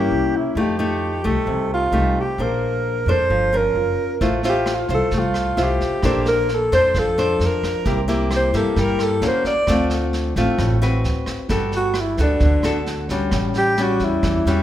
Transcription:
Already playing: A#3 C#4 E4 G4
0.11 C2
0.36 E4
0.55 F2 F3 A3 D#4 G4
0.61 G4
0.79 A3 D#4 G4
1.24 C2 A3 D#4 G4 A4
1.47 C2 C3
1.74 F4
1.92 C2 A3 D#4 G4
2.20 G4
2.38 A#1 A#3 D4 C5
2.42 A#4
3.06 F2 D4 A4 C5
3.11 C5
3.30 G1 F3
3.53 C#4 F4 A#4
3.57 A#4
3.75 F#1
4.21 A1 A3 E4 F4 C5, kick, snare
4.43 E4 F4 C5, snare
4.49 G4
4.66 cross-stick, snare
4.75 F4
4.88 C2 F4 C5, kick, snare
4.94 A4
5.11 C2 A3, kick, snare
5.19 F4
5.34 cross-stick, snare
5.57 C2 E4 F4 C5, snare
5.63 G4
5.80 kick, snare
6.02 A#1 A#3 D4 A4 C5, kick, cross-stick, snare
6.25 A#4, snare
6.49 snare
6.55 A4
6.72 F2 D4 A4 C5, kick, snare
6.94 F2 F3, kick, cross-stick, snare
6.99 A4
7.18 D4 C5, snare
7.39 F2, snare
7.46 A#4
7.63 kick, cross-stick, snare
7.85 C2 C3 A#3 E4 G4, kick, snare
8.08 A#3 E4 G4, snare
8.31 cross-stick, snare
8.36 C5
8.53 G2 A#3 E4 G4 A4, kick, snare
8.76 G2 G3, kick, snare
8.81 A#4
8.99 cross-stick, snare
9.03 A4
9.22 D#2 A#3 C#4 F#4, snare
9.28 C5
9.45 D5, kick, snare
9.67 D2 D3 A3 C4 F4, kick, cross-stick, snare
9.90 snare
10.13 snare
10.36 A1 A3 C4 F4, kick, snare
10.58 A1 A2, kick, cross-stick, snare
10.82 C4 F#4 B4, snare
11.04 D2, snare
11.26 kick, cross-stick, snare
11.49 G1 G3 B3 F#4 A4, kick, snare
11.72 snare
11.76 F#4
11.94 cross-stick, snare
12.00 E4
12.17 D2 B3 F#4 A4, kick, snare
12.22 D4
12.40 D2 D3, kick, snare
12.62 D2 B3 F#4 A4, cross-stick, snare
12.86 snare
13.09 G3 C#4 F#4, kick, snare
13.31 A1 A2, kick, cross-stick, snare
13.54 G4, snare
13.77 G3 C#4 F#4, snare
13.82 F#4
13.99 E2, kick, snare
14.04 E4
14.23 E2 E3, kick, cross-stick, snare
14.45 E2 G3 C#4 F#4, snare

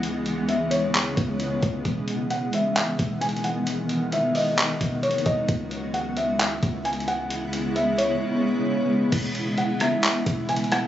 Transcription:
Already playing: C#2 C#3 E3 G#3 B3
0.03 closed hi-hat
0.26 closed hi-hat
0.49 E5, closed hi-hat
0.71 C#5, closed hi-hat
0.94 clap, closed hi-hat
1.17 C#2, kick, closed hi-hat
1.40 closed hi-hat
1.63 C#2, kick, closed hi-hat
1.85 E1 D#3, kick, closed hi-hat
2.08 closed hi-hat
2.30 F#5, closed hi-hat
2.53 E5, closed hi-hat
2.76 clap, closed hi-hat
2.99 E1, kick, closed hi-hat
3.21 G#5, closed hi-hat
3.29 closed hi-hat
3.36 closed hi-hat
3.44 F#5, closed hi-hat
3.67 F#4, closed hi-hat
3.89 closed hi-hat
4.12 E5, closed hi-hat
4.35 D#5, open hi-hat
4.58 clap, closed hi-hat
4.81 E1, kick, closed hi-hat
5.03 C#5, closed hi-hat
5.11 F#1, closed hi-hat
5.18 closed hi-hat
5.26 E1 D#5, kick, closed hi-hat
5.48 C#2 C#3 G#3 B3 E4, kick, closed hi-hat
5.71 closed hi-hat
5.94 F#5, closed hi-hat
6.17 E5, closed hi-hat
6.40 clap, closed hi-hat
6.63 C#2, kick, closed hi-hat
6.85 G#5, closed hi-hat
6.93 closed hi-hat
7.00 closed hi-hat
7.08 F#5, closed hi-hat
7.30 closed hi-hat
7.53 closed hi-hat
7.76 E5, closed hi-hat
7.98 C#5, closed hi-hat
9.12 E1 E3 G#3 B3 E4, kick, closed hi-hat, crash
9.35 closed hi-hat
9.58 F#5, closed hi-hat
9.80 E5, cross-stick, closed hi-hat
10.03 clap, closed hi-hat
10.26 E1, kick, closed hi-hat
10.49 G#5, closed hi-hat
10.56 closed hi-hat
10.64 closed hi-hat
10.72 F#5, cross-stick, closed hi-hat

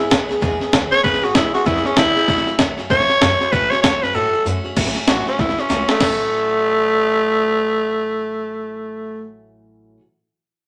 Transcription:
Already playing: G#4
0.00 G#1 B3
0.10 B1 G#3 B3 C#4 G#4, kick, snare, hi-hat pedal
0.29 C#2 B3 C#4 G#4, snare
0.41 E2 E3 G#3 B3 C#4 G#4, kick, snare
0.60 B3 C#4 G#4, muted upright bass stroke, snare
0.72 D2 G#3 B3 C#4 G#4, kick, snare, hi-hat pedal
0.91 B3 C#4 G#4 C#5, muted upright bass stroke, snare
1.03 E1 E3 G#3 B3 C#4 G#4 B4, kick, snare
1.14 snare
1.22 G#1 B3 C#4 F#4 G#4, snare
1.34 B1 G#3 B3 C#4 E4 G#4, kick, snare, hi-hat pedal
1.53 C#2 B3 C#4 F#4 G#4, snare
1.65 E2 E3 G#3 B3 C#4 E4 G#4, kick, snare
1.76 snare
1.84 B3 C#4 G#4, snare
1.96 D2 G#3 B3 C#4 E4 G#4, kick, snare, hi-hat pedal
2.15 B3 C#4 G#4, muted upright bass stroke, snare
2.28 A1 A2 E3 F#3 A3 C#4 F#4, kick, snare
2.37 snare
2.47 C#2 F#3 A3 C#4 F#4, snare
2.59 E2 F#3 A3 C#4 F#4, kick, snare, hi-hat pedal
2.78 F#2 F#3 A3 C#4 F#4, snare
2.90 A2 E3 F#3 A3 C#4 F#4 C#5, kick, snare
3.00 snare
3.09 F#3 A3 C#4 F#4, muted upright bass stroke, snare
3.20 F#2 F#3 A3 C#4 F#4, kick, snare, hi-hat pedal
3.40 F#3 A3 C#4 F#4, snare
3.52 A1 A2 E3 F#3 A3 C#4 F#4 B4, kick, snare
3.70 C#2 F#3 A3 C#4 F#4 C#5, snare
3.82 E2 F#3 A3 C#4 F#4 C#5, kick, snare, hi-hat pedal
4.02 F#2 F#3 A3 C#4 F#4 B4, snare
4.14 A2 E3 F#3 A3 C#4 F#4 A4
4.33 F#3 A3 C#4 F#4, muted upright bass stroke
4.45 F#2 F#3 A3 C#4 F#4, hi-hat pedal
4.64 F#3 A3 C#4 F#4, muted upright bass stroke
4.76 A1 A2 E3 F#3 A3 C#4 F#4, kick, snare, crash
4.87 snare
4.95 F#3 A3 C#4 F#4, muted upright bass stroke, snare
5.07 A1 A2 E3 F#3 A3 C#4 F#4, snare, hi-hat pedal
5.26 F#3 A3 C#4 F#4, muted upright bass stroke, snare
5.38 C#2 F#3 A3 C#4 E4 F#4, kick, snare
5.49 snare
5.57 F#3 A3 C#4 F#4, snare
5.69 C#2 A2 E3 F#3 A3 C#4 F#4, snare, hi-hat pedal
5.88 F#3 A3 C#4 F#4, muted upright bass stroke, snare
5.97 A2 E3, snare, crash
6.01 A1 F#3 A3, kick
6.05 A3 C#4
6.10 F#4

